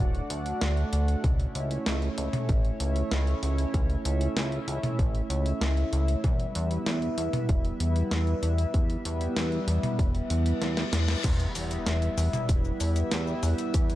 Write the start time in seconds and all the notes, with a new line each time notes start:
Already playing: A3 D4 F#4 D5 F#5
0.00 D1
0.15 closed hi-hat
0.30 D2, closed hi-hat
0.46 closed hi-hat
0.61 D2, snare, closed hi-hat
0.77 closed hi-hat
0.93 D2, closed hi-hat
1.08 closed hi-hat
1.24 C#2 C#4 E4 C#5 E5, kick, closed hi-hat, mid tom
1.40 closed hi-hat
1.55 C#2, closed hi-hat
1.71 closed hi-hat
1.86 C#2, snare, closed hi-hat
2.02 closed hi-hat
2.18 C#2, closed hi-hat
2.33 closed hi-hat, mid tom
2.49 A1, kick, closed hi-hat
2.65 closed hi-hat
2.80 C#2, closed hi-hat
2.96 closed hi-hat
3.11 C#2, snare, closed hi-hat
3.27 closed hi-hat
3.43 C#2, closed hi-hat
3.58 closed hi-hat
3.74 C#2, kick, closed hi-hat
3.90 closed hi-hat
4.05 C#2, closed hi-hat
4.21 closed hi-hat
4.36 C#2, snare, closed hi-hat
4.52 closed hi-hat
4.68 C#2, closed hi-hat
4.83 closed hi-hat, mid tom
4.99 A1, kick, closed hi-hat
5.15 closed hi-hat
5.30 C#2, closed hi-hat
5.46 closed hi-hat
5.61 C#2, snare, closed hi-hat
5.77 closed hi-hat
5.93 C#2, closed hi-hat
6.08 closed hi-hat
6.24 E2 G3 B3 B4, kick, closed hi-hat, mid tom
6.40 closed hi-hat
6.55 E2, closed hi-hat
6.71 closed hi-hat
6.86 E2, snare, closed hi-hat
7.02 closed hi-hat
7.18 E2, closed hi-hat
7.33 closed hi-hat, mid tom
7.49 E1, kick, closed hi-hat
7.65 closed hi-hat
7.80 E2, closed hi-hat
7.96 closed hi-hat
8.11 E2, snare, closed hi-hat
8.27 closed hi-hat
8.43 E2, closed hi-hat
8.58 closed hi-hat
8.74 E2, kick, closed hi-hat
8.90 closed hi-hat
9.05 E2, closed hi-hat
9.21 closed hi-hat
9.37 E2, snare, closed hi-hat
9.52 closed hi-hat
9.68 E2, closed hi-hat
9.83 closed hi-hat, mid tom
9.99 E1, kick, closed hi-hat, reverse cymbal
10.15 closed hi-hat
10.30 E2, closed hi-hat
10.46 closed hi-hat
10.61 E2, snare, closed hi-hat
10.77 snare, closed hi-hat
10.93 E2, snare, closed hi-hat
11.08 snare, closed hi-hat
11.24 E2 G3 B3 E4 B4 E5, kick, closed hi-hat, mid tom, crash, impact, shaker
11.40 closed hi-hat, shaker
11.55 E2, open hi-hat, shaker
11.71 closed hi-hat, shaker
11.86 E2, snare, closed hi-hat, shaker
12.02 closed hi-hat, shaker
12.18 E2, open hi-hat, shaker
12.33 closed hi-hat, mid tom, shaker
12.49 E1, kick, closed hi-hat, shaker
12.65 shaker
12.80 E2, open hi-hat, shaker
12.96 closed hi-hat, shaker
13.11 E2, snare, closed hi-hat, shaker
13.27 shaker
13.43 E2, open hi-hat, shaker
13.58 closed hi-hat, shaker
13.74 E2, kick, closed hi-hat, shaker
13.90 closed hi-hat, shaker